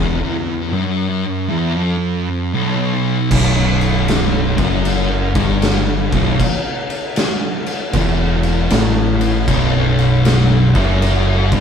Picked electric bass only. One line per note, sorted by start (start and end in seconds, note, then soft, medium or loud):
0.00 0.20 E1 medium
3.31 4.55 B0 loud
4.58 5.32 F#1 medium
5.35 6.09 G1 loud
6.12 6.38 B0 loud
7.93 8.67 E1 medium
8.71 9.44 A1 loud
9.48 10.71 B0 loud
10.75 11.48 F#1 loud
11.52 11.60 G1 loud